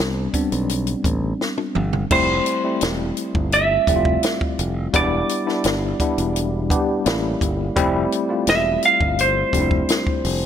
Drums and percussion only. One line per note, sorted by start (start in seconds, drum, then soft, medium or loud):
0.00 snare loud
0.34 kick medium
0.34 closed hi-hat medium
0.52 closed hi-hat soft
0.69 closed hi-hat medium
0.87 closed hi-hat soft
1.04 kick medium
1.04 closed hi-hat medium
1.41 snare medium
1.58 high tom medium
1.75 mid tom medium
1.93 floor tom medium
2.11 kick loud
2.11 crash loud
2.46 closed hi-hat medium
2.81 snare loud
2.81 closed hi-hat medium
3.17 closed hi-hat medium
3.35 kick loud
3.52 closed hi-hat medium
3.87 kick medium
3.87 closed hi-hat medium
4.05 kick medium
4.23 snare loud
4.23 closed hi-hat medium
4.41 kick medium
4.59 closed hi-hat medium
4.94 kick loud
4.94 closed hi-hat medium
5.29 closed hi-hat medium
5.49 snare soft
5.64 snare loud
5.64 closed hi-hat medium
6.00 kick medium
6.00 closed hi-hat medium
6.18 closed hi-hat soft
6.36 closed hi-hat medium
6.70 kick loud
6.70 closed hi-hat medium
7.06 snare loud
7.06 closed hi-hat medium
7.41 kick medium
7.41 closed hi-hat medium
7.77 kick loud
7.77 closed hi-hat medium
8.12 closed hi-hat medium
8.47 snare loud
8.47 closed hi-hat medium
8.83 closed hi-hat medium
9.01 kick loud
9.19 closed hi-hat medium
9.53 kick medium
9.53 closed hi-hat medium
9.71 kick medium
9.89 snare loud
9.89 closed hi-hat medium
10.07 kick medium
10.25 open hi-hat medium